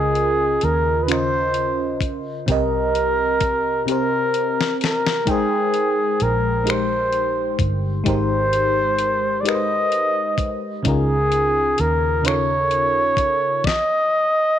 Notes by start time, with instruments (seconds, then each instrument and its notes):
Already playing: fingered electric bass C#2, fm electric piano C#3 C#4 F4 A#4 D#5, flugelhorn G#4
0.15 closed hi-hat
0.61 fingered electric bass D#2, flugelhorn A#4, closed hi-hat
1.03 fm electric piano C#3, flugelhorn B4
1.08 fm electric piano C#4 F4 A#4, flugelhorn C5, finger snap, closed hi-hat
1.12 fm electric piano D#5
1.54 closed hi-hat
2.01 fingered electric bass A#1, kick, closed hi-hat
2.46 fingered electric bass C2, fm electric piano C3 C4 G4 A#4, flugelhorn A#4, kick, closed hi-hat
2.52 fm electric piano D#5
2.95 closed hi-hat
3.41 kick, closed hi-hat
3.86 fm electric piano C3 C4 G4, closed hi-hat
3.90 flugelhorn A#4, fm electric piano A#4 C5
4.34 closed hi-hat
4.61 snare
4.81 flugelhorn A#4, snare, closed hi-hat
5.07 snare
5.25 fingered electric bass G#1, fm electric piano G#3 D#4 G5, kick, closed hi-hat
5.30 flugelhorn G#4, fm electric piano A#4 C5
5.74 closed hi-hat
6.20 fingered electric bass A#1, flugelhorn A#4, closed hi-hat
6.64 fm electric piano G#3 D#4 G4, closed hi-hat
6.69 fm electric piano A#4 C5, flugelhorn C5, finger snap
7.13 closed hi-hat
7.59 fingered electric bass G1, kick, closed hi-hat
8.04 fingered electric bass G#1, fm electric piano G#3 D#4 G4, kick, closed hi-hat
8.08 fm electric piano A#4 C5, flugelhorn C5
8.53 closed hi-hat
8.98 closed hi-hat
9.41 fm electric piano G#3 D#4, flugelhorn D5
9.45 fm electric piano G4 A#4 B4, flugelhorn D#5, finger snap, closed hi-hat
9.55 fm electric piano C5
9.92 closed hi-hat
10.38 kick, closed hi-hat
10.83 fingered electric bass C#2, fm electric piano C#3 C#4 D#4, kick, closed hi-hat
10.87 fm electric piano F4 A#4, flugelhorn G#4
11.32 closed hi-hat
11.78 fingered electric bass D#2, flugelhorn A#4, closed hi-hat
12.22 fm electric piano C#3 C#4 D#4, closed hi-hat
12.26 fm electric piano F4 A4, flugelhorn C#5, finger snap
12.34 fm electric piano A#4
12.71 closed hi-hat
13.17 fingered electric bass A#1, kick, closed hi-hat
13.64 flugelhorn D#5, kick, snare